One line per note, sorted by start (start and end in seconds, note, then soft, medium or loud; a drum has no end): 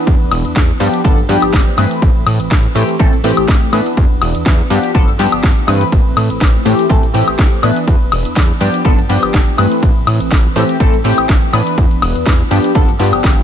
0.00 0.77 E3 medium
0.00 0.77 B3 medium
0.00 0.78 D4 medium
0.00 0.78 B4 medium
0.07 0.15 E2 loud
0.07 kick loud
0.07 closed hi-hat medium
0.07 ride medium
0.20 0.29 E1 soft
0.31 0.44 E1 medium
0.31 open hi-hat loud
0.31 ride medium
0.31 high woodblock medium
0.45 0.54 E2 soft
0.45 closed hi-hat medium
0.56 0.72 E2 medium
0.56 kick loud
0.56 snare loud
0.56 closed hi-hat medium
0.56 ride medium
0.80 0.89 G2 loud
0.80 1.01 F3 medium
0.80 1.01 B3 medium
0.80 1.01 D4 medium
0.80 1.01 G4 loud
0.80 open hi-hat loud
0.80 ride medium
0.94 closed hi-hat medium
1.04 1.17 G1 medium
1.04 1.19 F3 loud
1.04 1.19 B3 loud
1.04 1.19 D4 loud
1.04 1.19 A4 loud
1.04 kick loud
1.04 closed hi-hat medium
1.04 ride medium
1.18 1.27 G2 soft
1.18 closed hi-hat soft
1.29 1.37 G2 medium
1.29 1.75 F3 medium
1.29 1.75 B3 medium
1.29 1.75 D4 medium
1.29 1.75 G4 loud
1.29 open hi-hat loud
1.29 ride medium
1.42 1.51 G1 soft
1.42 closed hi-hat medium
1.42 high woodblock medium
1.53 1.62 G1 loud
1.53 kick loud
1.53 snare loud
1.53 closed hi-hat medium
1.53 ride medium
1.77 1.86 G2 medium
1.77 2.72 E3 medium
1.77 2.73 A3 medium
1.77 2.73 C4 medium
1.77 2.73 B4 medium
1.77 open hi-hat loud
1.77 ride medium
1.77 high woodblock medium
1.91 closed hi-hat medium
2.02 2.11 A1 loud
2.02 kick loud
2.02 closed hi-hat medium
2.02 ride medium
2.15 2.24 A2 soft
2.26 2.39 A2 medium
2.26 open hi-hat loud
2.26 ride medium
2.26 high woodblock medium
2.40 2.49 A1 soft
2.40 closed hi-hat medium
2.51 2.67 A1 medium
2.51 kick loud
2.51 snare loud
2.51 closed hi-hat medium
2.51 ride medium
2.75 2.84 A2 loud
2.75 2.96 E3 medium
2.75 2.96 A3 medium
2.75 2.96 C4 medium
2.75 2.97 G4 loud
2.75 open hi-hat loud
2.75 ride medium
2.89 closed hi-hat medium
2.99 3.12 A1 medium
2.99 3.14 E3 loud
2.99 3.14 A3 loud
2.99 3.14 C4 medium
2.99 3.14 A4 loud
2.99 kick loud
2.99 closed hi-hat medium
2.99 ride medium
3.13 3.22 A2 soft
3.13 closed hi-hat soft
3.24 3.32 A2 medium
3.24 3.70 E3 medium
3.24 3.70 A3 medium
3.24 3.70 C4 medium
3.24 3.70 G4 loud
3.24 open hi-hat loud
3.24 ride medium
3.37 3.46 A1 soft
3.37 closed hi-hat medium
3.37 high woodblock medium
3.48 3.57 A1 loud
3.48 kick loud
3.48 snare loud
3.48 closed hi-hat medium
3.48 ride medium
3.72 3.81 A2 medium
3.72 4.67 E3 medium
3.72 4.68 B3 medium
3.72 4.68 D4 medium
3.72 4.68 B4 medium
3.72 open hi-hat loud
3.72 ride medium
3.72 high woodblock medium
3.86 closed hi-hat medium
3.97 4.06 E2 loud
3.97 kick loud
3.97 closed hi-hat medium
3.97 ride medium
4.11 4.19 E1 soft
4.22 4.34 E1 medium
4.22 open hi-hat loud
4.22 ride medium
4.22 high woodblock medium
4.35 4.44 E2 soft
4.35 closed hi-hat medium
4.46 4.62 E2 medium
4.46 kick loud
4.46 snare loud
4.46 closed hi-hat medium
4.46 ride medium
4.70 4.79 G2 loud
4.70 4.91 F3 medium
4.70 4.91 B3 medium
4.70 4.92 D4 medium
4.70 4.92 G4 loud
4.70 open hi-hat loud
4.70 ride medium
4.84 closed hi-hat medium
4.94 5.08 G1 medium
4.94 5.09 F3 loud
4.94 5.09 B3 loud
4.94 5.09 D4 medium
4.94 5.10 A4 loud
4.94 kick loud
4.94 closed hi-hat medium
4.94 ride medium
5.08 5.17 G2 soft
5.08 closed hi-hat soft
5.19 5.28 G2 medium
5.19 5.65 F3 medium
5.19 5.65 B3 medium
5.19 5.65 D4 medium
5.19 5.65 G4 loud
5.19 snare soft
5.19 open hi-hat loud
5.19 ride medium
5.32 5.41 G1 soft
5.32 closed hi-hat medium
5.32 high woodblock medium
5.43 5.52 G1 medium
5.43 kick loud
5.43 snare loud
5.43 closed hi-hat medium
5.43 ride medium
5.67 5.84 G2 loud
5.67 6.62 E3 medium
5.67 6.63 A3 medium
5.67 6.63 C4 medium
5.67 6.63 B4 medium
5.67 open hi-hat loud
5.67 ride medium
5.67 high woodblock medium
5.81 closed hi-hat medium
5.92 6.01 A1 loud
5.92 kick loud
5.92 closed hi-hat medium
5.92 ride medium
6.05 6.14 A2 soft
6.17 6.29 A2 medium
6.17 open hi-hat loud
6.17 ride medium
6.17 high woodblock medium
6.30 6.39 A1 soft
6.30 closed hi-hat medium
6.41 6.57 A1 medium
6.41 kick loud
6.41 snare loud
6.41 closed hi-hat medium
6.41 ride medium
6.65 6.74 A2 loud
6.65 6.86 E3 medium
6.65 6.86 A3 medium
6.65 6.87 C4 medium
6.65 6.87 G4 loud
6.65 open hi-hat loud
6.65 ride medium
6.79 closed hi-hat medium
6.89 7.03 A1 medium
6.89 7.04 E3 loud
6.89 7.04 A3 medium
6.89 7.05 C4 loud
6.89 7.05 A4 loud
6.89 kick loud
6.89 closed hi-hat medium
6.89 ride medium
7.03 7.12 A2 soft
7.03 closed hi-hat soft
7.14 7.23 A2 medium
7.14 7.60 E3 medium
7.14 7.60 A3 medium
7.14 7.60 C4 medium
7.14 7.60 G4 medium
7.14 open hi-hat loud
7.14 ride medium
7.28 7.36 A1 soft
7.28 closed hi-hat medium
7.28 high woodblock medium
7.39 7.47 A1 loud
7.39 kick loud
7.39 snare loud
7.39 closed hi-hat medium
7.39 ride medium
7.62 7.71 A2 medium
7.62 8.57 E3 medium
7.62 8.58 B3 medium
7.62 8.58 D4 medium
7.62 8.58 B4 medium
7.62 open hi-hat loud
7.62 ride medium
7.62 high woodblock medium
7.76 closed hi-hat medium
7.88 7.96 E2 loud
7.88 kick loud
7.88 closed hi-hat medium
7.88 ride medium
8.01 8.10 E1 soft
8.12 8.25 E1 medium
8.12 open hi-hat loud
8.12 ride medium
8.12 high woodblock medium
8.25 8.34 E2 soft
8.25 closed hi-hat medium
8.36 8.52 E2 medium
8.36 kick loud
8.36 snare loud
8.36 closed hi-hat medium
8.36 ride medium
8.60 8.69 G2 loud
8.60 8.81 F3 medium
8.60 8.82 B3 medium
8.60 8.82 D4 medium
8.60 8.82 G4 loud
8.60 open hi-hat medium
8.60 ride medium
8.74 closed hi-hat medium
8.85 8.98 G1 medium
8.85 8.99 F3 loud
8.85 9.00 B3 medium
8.85 9.00 D4 loud
8.85 9.00 A4 loud
8.85 kick loud
8.85 closed hi-hat medium
8.85 ride medium
8.98 9.07 G2 soft
8.98 closed hi-hat soft
9.09 9.18 G2 medium
9.09 9.55 F3 medium
9.09 9.55 B3 medium
9.09 9.56 D4 medium
9.09 9.56 G4 medium
9.09 open hi-hat loud
9.09 ride medium
9.23 9.32 G1 soft
9.23 closed hi-hat medium
9.23 high woodblock medium
9.34 9.42 G1 medium
9.34 kick loud
9.34 snare loud
9.34 closed hi-hat medium
9.34 ride medium
9.57 9.67 G2 medium
9.57 10.53 E3 medium
9.57 10.53 A3 medium
9.57 10.53 C4 medium
9.57 10.53 B4 medium
9.57 open hi-hat medium
9.57 ride medium
9.57 high woodblock medium
9.72 closed hi-hat medium
9.83 9.91 A1 loud
9.83 kick loud
9.83 closed hi-hat medium
9.83 ride medium
9.96 10.05 A2 soft
10.07 10.20 A2 medium
10.07 open hi-hat loud
10.07 ride medium
10.07 high woodblock medium
10.20 10.29 A1 soft
10.20 closed hi-hat medium
10.31 10.48 A1 medium
10.31 kick loud
10.31 snare loud
10.31 closed hi-hat medium
10.31 ride medium
10.55 10.64 A2 loud
10.55 10.77 E3 medium
10.55 10.77 A3 medium
10.55 10.77 C4 medium
10.55 10.77 G4 loud
10.55 open hi-hat medium
10.55 ride medium
10.69 closed hi-hat medium
10.80 10.93 A1 medium
10.80 10.95 E3 loud
10.80 10.95 A3 loud
10.80 10.95 C4 loud
10.80 10.95 A4 loud
10.80 kick loud
10.80 closed hi-hat medium
10.80 ride medium
10.93 11.02 A2 soft
10.93 closed hi-hat soft
11.04 11.13 A2 loud
11.04 11.50 E3 medium
11.04 11.51 A3 medium
11.04 11.51 C4 medium
11.04 11.51 G4 medium
11.04 open hi-hat loud
11.04 ride medium
11.18 11.27 A1 soft
11.18 closed hi-hat medium
11.18 high woodblock medium
11.29 11.37 A1 loud
11.29 kick loud
11.29 snare loud
11.29 closed hi-hat medium
11.29 ride medium
11.53 11.62 A2 medium
11.53 12.48 E3 medium
11.53 12.48 B3 medium
11.53 12.48 D4 medium
11.53 12.49 B4 medium
11.53 open hi-hat medium
11.53 ride medium
11.53 high woodblock medium
11.67 closed hi-hat medium
11.78 11.86 E2 loud
11.78 kick loud
11.78 closed hi-hat medium
11.78 ride medium
11.91 12.00 E1 soft
11.91 closed hi-hat soft
12.02 12.15 E1 medium
12.02 open hi-hat loud
12.02 ride medium
12.02 high woodblock medium
12.15 12.24 E2 soft
12.15 closed hi-hat medium
12.26 12.43 E2 medium
12.26 kick loud
12.26 snare loud
12.26 closed hi-hat medium
12.26 ride medium
12.40 closed hi-hat soft
12.51 12.59 G2 loud
12.51 12.72 F3 medium
12.51 12.72 B3 medium
12.51 12.72 D4 medium
12.51 12.72 G4 loud
12.51 open hi-hat medium
12.51 ride medium
12.64 closed hi-hat medium
12.75 12.88 G1 medium
12.75 12.90 F3 loud
12.75 12.90 B3 loud
12.75 12.90 D4 loud
12.75 12.90 A4 loud
12.75 kick loud
12.75 closed hi-hat medium
12.75 ride medium
12.88 12.97 G2 soft
12.88 closed hi-hat soft
12.99 13.12 G2 medium
12.99 13.43 F3 medium
12.99 13.43 B3 medium
12.99 13.43 D4 medium
12.99 13.43 G4 loud
12.99 snare soft
12.99 open hi-hat loud
12.99 ride medium
13.13 13.22 G1 soft
13.13 closed hi-hat medium
13.13 high woodblock medium
13.24 13.43 G1 medium
13.24 kick loud
13.24 snare loud
13.24 closed hi-hat medium
13.24 ride medium